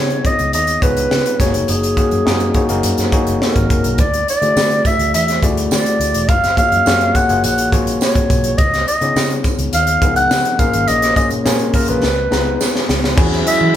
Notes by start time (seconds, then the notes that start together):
Already playing: C#3 B3 D#4 F4 G#4 C#5
0.10 closed hi-hat
0.25 D#5, kick, closed hi-hat
0.39 C#2, closed hi-hat
0.53 D#2 D#5, closed hi-hat
0.67 closed hi-hat
0.82 C#2 B3 D#4 F4 G#4 B4 C#5, kick, closed hi-hat
0.97 closed hi-hat
1.11 C#3, snare
1.26 closed hi-hat
1.40 F#1 G#3 D#4 F#4 G#4 C#5, kick, snare, closed hi-hat
1.46 A#3
1.54 F1, closed hi-hat
1.68 F#1 G#4, closed hi-hat
1.83 closed hi-hat
1.97 A#3 D#4 F#4 G#4 C#5, kick, closed hi-hat
2.11 F#2, closed hi-hat
2.25 F#2 A#3 D#4 F#4 G#4 A#4, snare
2.40 closed hi-hat
2.54 A#3 D#4 F#4 G#4 C#5, kick, closed hi-hat
2.69 F#1 A#3 D#4 F#4 G#4 A#4, closed hi-hat
2.83 F#2, closed hi-hat
2.98 F#2, snare, closed hi-hat
3.12 A#3 D#4 F#4 G#4 C#5, kick, closed hi-hat
3.27 F#1, closed hi-hat
3.42 A#4, snare
3.56 G#1, kick, closed hi-hat
3.70 F#1, kick, closed hi-hat
3.84 B1, closed hi-hat
3.98 D2 D5, kick, closed hi-hat, tambourine
4.14 closed hi-hat
4.28 D5, closed hi-hat, tambourine
4.41 D3 A3 E4 F#4 G#4 D5, closed hi-hat
4.56 D3, snare, tambourine
4.71 closed hi-hat
4.85 E5, kick, closed hi-hat, tambourine
4.99 D2, closed hi-hat
5.14 E2 E5, closed hi-hat, tambourine
5.28 snare, closed hi-hat
5.43 D2 A3 E4 F#4 G#4 D5, kick, closed hi-hat, tambourine
5.57 closed hi-hat
5.71 D3 D5, snare, tambourine
5.86 closed hi-hat
6.00 D2, closed hi-hat, tambourine
6.14 E1, closed hi-hat
6.29 F#1 F5, kick, closed hi-hat, tambourine
6.44 snare, closed hi-hat
6.57 A#3 F4 F#4 G#4 C#5 F5, kick, closed hi-hat, tambourine
6.72 F#2, closed hi-hat
6.86 F#2 A#3 F4 F#4 G#4 C#5, snare, tambourine
7.01 closed hi-hat
7.15 A#3 F4 F#4 G#4 C#5 F#5, kick, closed hi-hat, tambourine
7.29 F#1 A#3 F4 F#4 G#4 C#5, closed hi-hat
7.43 A#1 F#5, closed hi-hat, tambourine
7.58 closed hi-hat
7.72 A#1 A#3 F4 F#4 G#4 C#5, kick, closed hi-hat
7.87 closed hi-hat
8.01 C#5, snare, tambourine
8.15 kick, closed hi-hat
8.30 B1, kick, closed hi-hat, tambourine
8.44 closed hi-hat
8.58 C#2 D#5, kick, closed hi-hat, tambourine
8.74 snare, closed hi-hat
8.88 D#5, closed hi-hat, tambourine
9.01 C#3 B3 D#4 F4 G#4 C#5, closed hi-hat
9.16 C#3, snare, tambourine
9.30 closed hi-hat
9.44 kick, closed hi-hat, tambourine
9.59 C#2, closed hi-hat
9.73 D#2 F5, closed hi-hat, tambourine
9.87 closed hi-hat
10.02 C#2 F3 B3 D#4 G#4 A#4, kick, closed hi-hat
10.16 F#5, closed hi-hat
10.31 C#3, snare, tambourine
10.45 closed hi-hat
10.59 A#1 A#3 C#4 F4 G#4 A#4 F5, kick, closed hi-hat, tambourine
10.73 G#1, closed hi-hat
10.88 A#1 D#5, closed hi-hat
11.02 snare, closed hi-hat
11.16 A#3 C#4 F4 G#4 C#5 D#5, kick, closed hi-hat, tambourine
11.30 A#2, closed hi-hat
11.45 A#2 A#3 C#4 F4 G#4 A#4 C#5, snare, tambourine
11.59 closed hi-hat
11.73 A#3 C#4 F4 G#4 A#4, kick, open hi-hat, tambourine
11.88 A#1 A#3 C#4 F4 G#4 A#4 B4, closed hi-hat
12.03 C#2, snare, tambourine
12.30 C#2 B3 D#4 E4 G#4 A#5, snare, tambourine
12.38 F4
12.61 snare, tambourine
12.76 snare
12.89 C#2, snare, tambourine
13.04 snare
13.17 E2 C#3 F#3 G#3 C#4 E4 F#4 G#4 B4, kick, crash, tambourine
13.32 snare
13.46 C#4 E4 F#4 G#4 B4 E5, closed hi-hat, tambourine
13.61 E3